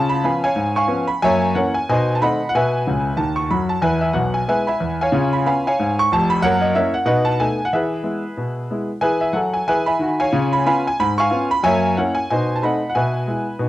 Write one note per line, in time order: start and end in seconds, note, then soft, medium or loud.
0.00 0.19 C#3 medium
0.00 0.26 F4 soft
0.00 0.10 A5 loud
0.09 0.22 B5 medium
0.24 0.42 F3 soft
0.24 0.42 B3 soft
0.24 0.42 C#4 soft
0.24 0.42 F5 medium
0.24 0.42 G#5 medium
0.24 0.43 B5 medium
0.44 0.74 C#5 medium
0.44 0.74 F5 medium
0.44 0.75 G#5 medium
0.56 0.84 G#2 medium
0.76 1.07 F5 medium
0.76 1.07 G#5 medium
0.76 1.09 C#6 medium
0.87 1.06 F3 soft
0.87 1.06 B3 soft
0.87 1.06 C#4 soft
1.07 1.21 B5 medium
1.22 1.50 F#2 medium
1.22 1.42 A#3 medium
1.22 1.53 C#5 medium
1.22 1.53 E5 medium
1.22 1.55 G#5 loud
1.55 1.73 E3 soft
1.55 1.73 A#3 soft
1.55 1.73 C#4 soft
1.55 1.74 A#4 medium
1.55 1.74 C#5 medium
1.55 1.74 F#5 medium
1.74 1.87 G#5 medium
1.89 2.16 B2 medium
1.89 2.08 D#4 soft
1.89 2.13 C5 medium
1.89 2.13 D#5 medium
1.89 2.14 G#5 medium
2.15 2.21 A5 medium
2.21 2.39 D#3 soft
2.21 2.38 A3 soft
2.21 2.39 C4 soft
2.21 2.46 D#5 medium
2.21 2.45 F#5 medium
2.21 2.47 B5 medium
2.49 2.54 F#5 medium
2.55 2.81 B2 medium
2.55 3.16 B4 medium
2.55 3.15 E5 medium
2.55 3.19 G#5 medium
2.87 3.11 C#2 medium
2.87 3.11 C#3 medium
3.17 3.41 D#2 medium
3.17 3.42 D#3 medium
3.17 3.37 A5 medium
3.36 3.49 C#6 medium
3.51 3.75 F#2 medium
3.51 3.75 F#3 medium
3.51 3.70 B5 medium
3.69 3.82 A5 medium
3.81 4.08 E2 medium
3.81 4.08 E3 medium
3.81 4.01 B4 medium
3.81 3.99 E5 medium
3.81 4.02 G#5 medium
4.01 4.14 E5 medium
4.13 4.40 B1 medium
4.13 4.40 B2 medium
4.13 4.33 F#5 medium
4.34 4.47 G#5 medium
4.48 4.66 G#3 soft
4.48 4.66 B3 soft
4.48 4.66 E4 soft
4.48 4.67 B4 medium
4.48 4.66 E5 medium
4.48 4.67 G#5 medium
4.67 4.98 E5 medium
4.67 4.98 G#5 medium
4.67 5.00 B5 medium
4.80 5.06 E2 medium
4.80 5.06 E3 medium
5.01 5.31 C#5 medium
5.01 5.31 F5 medium
5.01 5.33 G#5 medium
5.12 5.40 C#3 medium
5.12 5.32 F4 medium
5.33 5.45 B5 medium
5.46 5.63 B3 soft
5.46 5.64 C#4 soft
5.46 5.64 F4 soft
5.46 5.64 F5 medium
5.46 5.65 G#5 medium
5.46 5.65 B5 medium
5.67 5.96 C#5 medium
5.67 5.97 F5 medium
5.67 5.98 G#5 medium
5.79 6.06 G#2 medium
5.99 6.11 C#6 medium
6.12 6.37 F1 medium
6.12 6.37 F2 medium
6.12 6.31 A5 medium
6.30 6.43 B5 loud
6.42 6.70 F#2 medium
6.42 6.62 A#3 medium
6.42 6.62 A#4 medium
6.42 6.62 C#5 medium
6.42 6.62 F#5 loud
6.61 6.75 D#5 medium
6.75 6.93 A#3 soft
6.75 6.93 C#4 soft
6.75 6.94 E4 soft
6.75 6.94 A#4 medium
6.75 6.94 C#5 medium
6.75 6.95 E5 medium
6.94 7.04 F#5 medium
7.06 7.34 B2 medium
7.06 7.25 D#4 soft
7.06 7.26 B4 medium
7.06 7.25 D#5 medium
7.06 7.26 F#5 medium
7.25 7.39 A5 medium
7.40 7.58 A3 soft
7.40 7.58 B3 soft
7.40 7.58 D#4 soft
7.40 7.66 G#5 medium
7.65 7.72 F#5 medium
7.73 8.01 E3 medium
7.73 8.86 G#4 medium
7.73 8.87 B4 medium
7.73 8.90 E5 medium
8.03 8.22 G#3 soft
8.03 8.22 B3 soft
8.03 8.22 E4 soft
8.37 8.65 B2 soft
8.70 8.89 G#3 soft
8.70 8.88 B3 soft
8.70 8.89 E4 soft
9.01 9.28 E3 medium
9.01 9.29 G#4 medium
9.01 9.21 B4 medium
9.01 9.19 E5 medium
9.01 9.21 G#5 medium
9.21 9.35 E5 medium
9.33 9.60 F#3 medium
9.33 9.61 A4 soft
9.33 9.54 F#5 medium
9.54 9.66 G#5 medium
9.67 9.94 E3 medium
9.67 9.95 G#4 medium
9.67 9.86 B4 medium
9.67 9.86 E5 medium
9.67 9.86 G#5 medium
9.86 10.18 E5 medium
9.86 10.18 G#5 medium
9.86 10.19 B5 medium
9.99 10.26 D#3 medium
9.99 10.27 F#4 medium
10.20 10.51 C#5 medium
10.20 10.50 F5 medium
10.20 10.52 G#5 medium
10.33 10.60 C#3 medium
10.33 10.52 F4 soft
10.53 10.65 B5 medium
10.66 10.84 B3 soft
10.66 10.84 C#4 soft
10.66 10.85 F4 medium
10.66 10.84 F5 medium
10.66 10.84 G#5 medium
10.66 10.85 B5 medium
10.87 10.99 G#5 medium
11.00 11.27 G#2 medium
11.00 11.18 B5 loud
11.18 11.49 F5 medium
11.18 11.49 G#5 medium
11.18 11.50 C#6 medium
11.31 11.49 B3 soft
11.31 11.49 C#4 soft
11.31 11.48 F4 medium
11.51 11.64 B5 loud
11.63 11.91 F#2 medium
11.63 11.83 A#3 medium
11.63 11.94 C#5 medium
11.63 11.95 E5 medium
11.63 11.96 G#5 loud
11.97 12.14 A#3 soft
11.97 12.15 C#4 soft
11.97 12.15 E4 soft
11.97 12.15 A#4 medium
11.97 12.15 C#5 medium
11.97 12.16 F#5 medium
12.15 12.28 G#5 medium
12.30 12.57 B2 medium
12.30 12.49 D#4 soft
12.30 12.54 C5 medium
12.30 12.54 D#5 medium
12.30 12.55 G#5 medium
12.56 12.61 A5 medium
12.62 12.80 A3 soft
12.62 12.80 C4 soft
12.62 12.81 D#4 soft
12.62 12.87 D#5 medium
12.62 12.87 F#5 medium
12.62 12.88 B5 medium
12.90 12.95 F#5 medium
12.95 13.22 B2 medium
12.95 13.69 B4 medium
12.95 13.69 E5 medium
12.95 13.69 G#5 medium
13.27 13.45 G#3 soft
13.27 13.45 B3 soft
13.27 13.45 E4 soft
13.59 13.69 B2 medium
13.59 13.69 D#4 soft